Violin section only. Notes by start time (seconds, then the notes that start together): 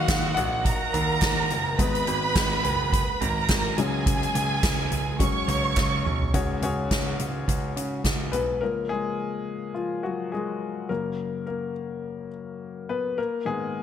Already playing: F#4 F#5
0.64 A#4 A#5
1.79 B4 B5
3.21 A#4 A#5
3.77 G#4 G#5
5.20 C#5 C#6